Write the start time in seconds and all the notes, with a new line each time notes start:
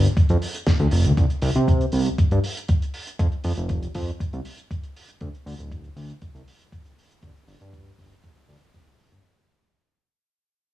0.04 closed hi-hat
0.17 kick, closed hi-hat
0.29 F2, closed hi-hat
0.42 open hi-hat
0.55 closed hi-hat
0.67 kick, snare, closed hi-hat
0.79 D2, closed hi-hat
0.91 F1, open hi-hat
1.05 D2, closed hi-hat
1.18 C2, kick, closed hi-hat
1.30 closed hi-hat
1.42 C2, open hi-hat
1.55 C3, closed hi-hat
1.68 kick, closed hi-hat
1.81 closed hi-hat
1.92 C2, open hi-hat
2.06 closed hi-hat
2.18 G2, kick, closed hi-hat
2.31 G2, closed hi-hat
2.44 open hi-hat
2.57 closed hi-hat
2.68 kick, closed hi-hat
2.82 closed hi-hat
2.94 open hi-hat
3.07 closed hi-hat
3.19 F2, kick, closed hi-hat
3.32 closed hi-hat
3.44 F2, open hi-hat
3.57 F1, closed hi-hat
3.69 kick, closed hi-hat
3.83 closed hi-hat
3.95 F2, kick, open hi-hat
4.08 closed hi-hat
4.20 kick, closed hi-hat
4.33 C2, closed hi-hat
4.45 open hi-hat
4.58 closed hi-hat
4.71 kick, closed hi-hat
4.83 closed hi-hat
4.96 open hi-hat
5.08 closed hi-hat
5.21 D2, kick, closed hi-hat
5.34 closed hi-hat
5.46 D2, open hi-hat
5.59 D1, closed hi-hat
5.72 kick, closed hi-hat
5.84 closed hi-hat
5.96 D2, open hi-hat
6.10 closed hi-hat
6.22 C2, kick, closed hi-hat
6.35 C2, closed hi-hat
6.48 open hi-hat
6.61 closed hi-hat
6.72 kick, closed hi-hat
6.85 closed hi-hat
6.99 open hi-hat
7.11 closed hi-hat
7.23 G1, kick, closed hi-hat
7.36 closed hi-hat
7.48 G1, open hi-hat
7.61 G2, closed hi-hat
7.73 kick, closed hi-hat
7.86 closed hi-hat
7.98 G1, kick, open hi-hat
8.12 closed hi-hat
8.23 kick, closed hi-hat
8.37 closed hi-hat
8.48 D2, open hi-hat
8.62 closed hi-hat
8.74 kick, closed hi-hat
8.86 closed hi-hat
8.99 open hi-hat
9.12 G1, closed hi-hat